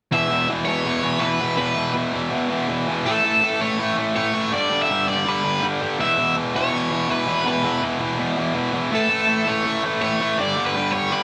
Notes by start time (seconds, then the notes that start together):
0.11 E2 B2 E3 E5
0.31 E2 B2 E3
0.48 E2 B2 E3
0.65 E2 B2 E3 C#5
0.86 E2 B2 E3
1.04 E2 B2 E3
1.19 E2 B2 B4
1.23 E3
1.41 E2 B2 E3
1.57 E2 B2 E3 B4
1.78 E2 B2 E3
1.97 E2 B2 E3
2.14 E2 B2 E3
2.33 E2 B2 E3
2.51 E2 B2 E3
2.69 E2 B2 E3
2.88 E2 B2 E3
3.06 A2 E3 A3 A4
3.24 A2 E3 A3
3.42 A2 E3 A3
3.60 A2 E3 A3 C#5
3.78 A2 E3 A3
3.97 A2 E3 A3
4.16 A2 E3 A3 C#5
4.34 A2 E3 A3
4.52 G2 D3 G3 D5
4.72 G2 D3 G3
4.82 E5
4.90 G2 D3 G3
5.08 G2 D3 G3 D5
5.27 G2 D3 G3 B4
5.44 G2 D3 G3
5.62 G2 D3 G3
5.80 G2 D3 G3
5.98 E2 B2 E3 E5
6.17 E2 B2 E3
6.35 E2 B2 E3
6.54 E2 B2 E3 C#5
6.72 E2 B2 E3
6.91 E2 B2 E3
7.09 E2 B2 E3 B4
7.28 E2 B2 E3
7.46 E2 B2 E3 B4
7.63 E2 B2 E3
7.82 E2 B2 E3
8.00 E2 B2 E3
8.18 E2 B2 E3
8.37 E2 B2 E3
8.55 E2 B2 E3
8.73 E2 B2 E3
8.91 A2 E3 A3 A4
9.10 A2 E3 A3
9.28 A2 E3 A3
9.47 A2 E3 A3 C#5
9.65 A2 E3 A3
9.83 A2 E3 A3
10.01 A2 E3 A3 C#5
10.20 A2 E3 A3
10.38 G2 D3 G3 D5
10.58 G2 D3 G3
10.66 B4
10.75 G2 D3 G3
10.92 G2 D3 G3 C#5
11.11 G2 D3 G3 B4